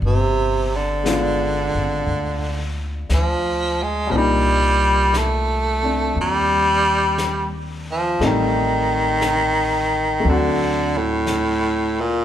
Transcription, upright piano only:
1.03 G#3 B3 D4
1.08 F4
4.07 A#2 G3
4.14 D4 D#4
5.82 C4 D4
8.20 G3 A3 C4 D#4
10.20 F#3 A3
10.27 C4 F#4

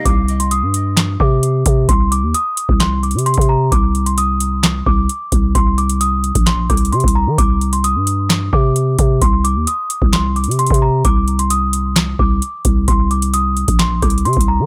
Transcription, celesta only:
0.05 D6
0.40 C6
0.51 D#6
1.20 D6
1.89 C6
2.12 D6
2.34 D#6
2.80 C6
3.03 D6
3.26 C6
3.49 A#5
3.72 D6
4.06 C6
4.18 D#6
4.86 D6
5.55 C6
5.78 D6
6.01 D#6
6.47 C6
6.70 D6
6.92 C6
7.15 A#5
7.38 D6
7.73 C6
7.84 D#6
8.53 D6
9.22 C6
9.44 D6
9.67 D#6
10.13 C6
10.36 D6
10.59 C6
10.82 A#5
11.05 D6
11.39 C6
11.51 D#6
12.19 D6
12.88 C6
13.11 D6
13.34 D#6
13.80 C6
14.02 D6
14.25 C6
14.48 A#5

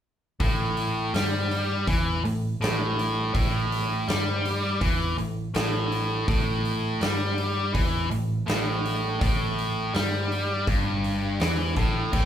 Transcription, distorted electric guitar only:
0.40 A2
1.14 G3
1.88 E3
2.24 A2
2.61 A2
3.34 A2
4.08 G3
4.81 E3
5.19 A2
5.54 A2
6.28 A2
7.01 G3
7.73 E3
8.11 A2
8.47 A2
9.21 A2
9.94 G3
10.67 G2
11.40 E3
11.77 A2
12.13 A2

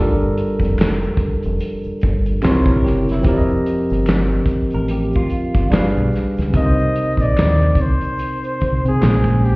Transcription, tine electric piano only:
Already playing: G3 D4 F4
0.00 A4 A#4
2.42 C3 C4 D#4 A#4
2.47 E4 C#5
3.21 F3 C4
3.26 G4 A#4
3.31 D5
3.38 D#5
5.70 G3 D4 G#4 B4
5.75 F5
6.50 C3 C4
6.55 D#4 A#4
6.60 C5
6.66 C5
9.00 A#2 G#3 A#3 C4
9.05 C5
9.09 C#4

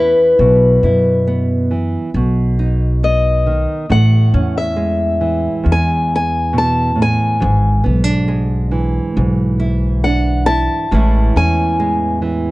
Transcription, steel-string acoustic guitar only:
Already playing: B4
3.04 D#5
3.92 F#5
4.58 E5
5.72 G#5
6.16 G#5
6.58 A5
7.02 G#5
10.04 F#5
10.46 A5
11.37 G#5

